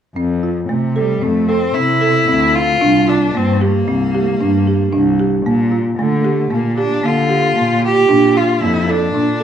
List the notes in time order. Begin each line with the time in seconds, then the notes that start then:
0.16 F2 C4
0.43 F4
0.69 C3 A3
0.96 G3 A4
1.22 F2 A3 C4
1.49 C4 A4
1.74 C3 C4 E4
2.01 A4
2.28 D2 C4
2.55 F4
2.81 C2 D4
3.08 D4 F4
3.35 G2 A#3 C4
3.61 A#3 G4
3.88 C2 C4
4.15 G4
4.41 G2 D4
4.67 G4
4.93 C2 D4
5.20 G4
5.46 A#2 A#3
5.72 F4
5.98 D3 A3
6.20 A#3
6.25 A3 G4
6.50 A#2 A#3
6.78 D4 G4
7.03 D3 A#3 F4
7.29 G4
7.56 A#2 A#3
7.83 F4 G4
8.09 A#2 D4
8.35 F4
8.61 F2 A#3 E4
8.88 D4 A4
9.14 A#2 D4